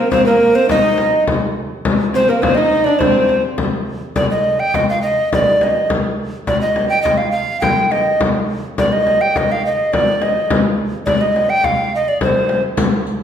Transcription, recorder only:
Already playing: A#4
0.11 C5
0.26 A#4
0.55 C5
0.70 D#5
2.15 C5
2.29 A#4
2.42 C5
2.55 D#5
2.84 D5
2.99 C5
4.16 D5
4.31 D#5
4.60 G5
4.75 D#5
4.89 F5
5.02 D#5
5.33 D5
5.63 D#5
6.47 D5
6.61 D#5
6.89 G5
7.02 D#5
7.18 F5
7.31 F5
7.61 G5
7.91 D#5
8.79 D5
8.93 D#5
9.21 G5
9.37 D#5
9.52 F5
9.66 D#5
9.93 D5
10.22 D#5
11.06 D5
11.21 D#5
11.50 G5
11.64 F5
11.95 D#5
12.08 D5
12.23 C5

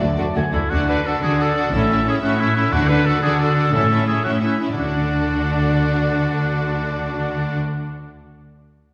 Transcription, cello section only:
0.03 D2
0.19 D2
0.37 D2
0.55 D2
0.72 D3
1.23 D3
1.73 A2
2.23 A2
2.73 D3
3.23 D3
3.73 A2
4.25 A2
4.77 D3

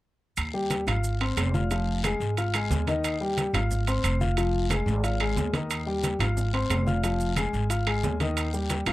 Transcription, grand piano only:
0.54 G3 G4 G5
0.88 F4 F5 F6
1.21 C4 C5 C6
1.54 F4 F5 F6
1.71 F3 F4 F5
2.04 G#3 G#4 G#5
2.38 F4 F5 F6
2.54 G#3 G#4 G#5
2.88 D#3 D#4 D#5
3.21 G3 G4 G5
3.54 F4 F5 F6
3.88 C4 C5 C6
4.21 F4 F5 F6
4.38 F3 F4 F5
4.71 G#3 G#4 G#5
5.04 F4 F5 F6
5.20 G#3 G#4 G#5
5.53 D#3 D#4 D#5
5.87 G3 G4 G5
6.20 F4 F5 F6
6.53 C4 C5 C6
6.87 F4 F5 F6
7.03 F3 F4 F5
7.37 G#3 G#4 G#5
7.70 F4 F5 F6
7.86 G#3 G#4 G#5
8.21 D#3 D#4 D#5
8.53 G3 G4 G5
8.87 F4 F5 F6

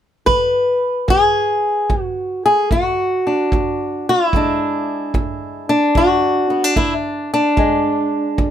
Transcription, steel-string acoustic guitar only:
0.26 B4
1.08 E2 G#4
1.90 E2
2.02 F#4
2.46 G#4
2.71 E2 F#4
3.27 D4
3.53 E2
4.09 F4
4.27 E4
4.34 E2 G#3 D4
5.15 E2
5.69 D4
5.95 E2 F#4
6.50 B3
6.64 D4
6.76 E2 E4
7.34 D4
7.57 E2 G#3
8.38 E2

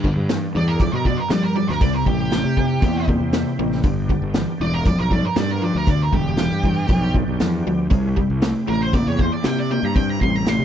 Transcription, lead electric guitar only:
0.57 D5
0.68 A#4
0.80 D5
0.92 A#4
1.06 D5
1.18 A#4
1.30 D5
1.43 A#4
1.56 D5
1.68 A#4
1.82 D5
1.94 A#4
2.07 G4
4.62 D5
4.74 A#4
4.87 D5
4.99 A#4
5.13 D5
5.25 A#4
5.38 D5
5.51 A#4
5.64 D5
5.77 A#4
5.90 D5
6.02 A#4
6.14 G4
8.69 A#4
8.83 C5
8.95 D5
9.07 C#5
9.20 C5
9.32 D5
9.45 G5
9.59 D5
9.71 G5
9.84 A#5
9.96 G5
10.09 A#5
10.22 C6
10.35 A#5
10.48 C6

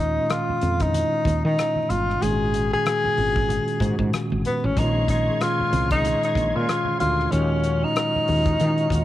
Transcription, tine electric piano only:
Already playing: A#2 D#3 G#3 C#4 F4
0.15 A#2 D#3 G#3 C#4
0.19 F4
0.79 A#2 D#3 G#3 C#4
0.83 E4
0.90 F4
2.20 A#2 D#3 G#3 C#4
2.25 F4
2.31 F#4
3.16 A#2 D#3 G#3 C#4
3.21 F4
3.27 F#4
3.79 A#2 D#3 G#3 C#4
3.84 F#4
4.76 A#2 D#3 G#3 C#4
4.80 F4
5.26 A#2 D#3 G#3 C#4
5.30 G#4
5.90 A#2 D#3 G#3 C#4
5.95 G#4
7.30 A#2 D#3 G#3 C#4
7.35 F4
8.27 A#2 D#3 G#3 C#4
8.31 E4
8.37 F4
8.90 A#2 D#3 G#3 C#4 F4

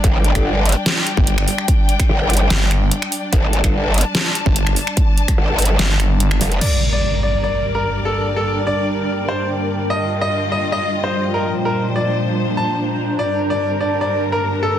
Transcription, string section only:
Already playing: G3 D4 D5
0.04 G5
3.33 A5
6.61 G2 G3 A#4 D5
9.90 F4 D#5
11.54 A#2 F3 D4 C5
13.19 G2 G3 A#4

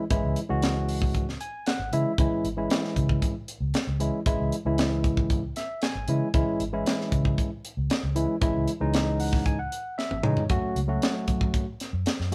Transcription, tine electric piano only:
0.10 E3 G#3 C#4 E4
0.49 E3 G#3 C#4 F#4
1.41 G#5
1.67 F#5
1.93 E3 G#3 C#4 E4 E5
2.19 E3 G#3 C#4 E4
2.57 E3 G#3 C#4 E4
4.00 E3 G#3 C#4 E4
4.26 E3 G#3 C#4 E4
4.66 E3 G#3 C#4 E4
5.57 E5
5.83 G#5
6.08 E3 G#3 C#4 E4
6.34 E3 G#3 C#4 E4
6.73 E3 G#3 C#4 E4
8.15 E3 G#3 C#4 E4
8.41 E3 G#3 C#4 E4
8.80 E3 G#3 C#4 D#4
9.20 F#5
9.46 G#5
9.59 F#5
9.98 E5
10.23 E3 G#3 C#4 D#4 C#5
10.49 F#3 A3 C#4 F#4
10.88 F#3 A3 C#4 F#4
12.32 F#3 A3

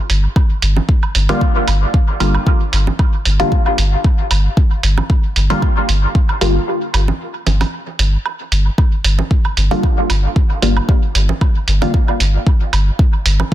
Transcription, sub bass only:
0.10 G1
0.63 G1
1.15 G1
1.68 G1
2.20 G1
2.73 G1
3.26 G1
3.78 G1
4.31 G1
4.83 G1
5.36 G1
5.89 G1
6.41 G1
6.94 G1
7.47 G1
7.99 G1
8.52 G1
9.04 G1
9.57 G1
10.10 G1
10.62 G1
11.15 G1
11.68 G1
12.20 G1
12.73 G1
13.25 G1

